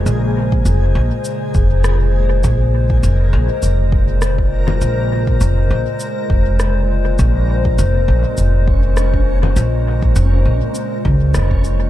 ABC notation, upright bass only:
X:1
M:4/4
L:1/8
Q:"Swing 16ths" 1/4=101
K:Bbm
V:1 name="Upright bass" clef=bass
B,,,2 F,,, B,,, z F,,,3 | B,,,2 F,,, B,,, F,,,4 | B,,,2 F,,, B,,, z F,,,3 | B,,,2 F,,, B,,, F,,,4 |
B,,,2 F,,, B,,, z D,, F,,,2 |]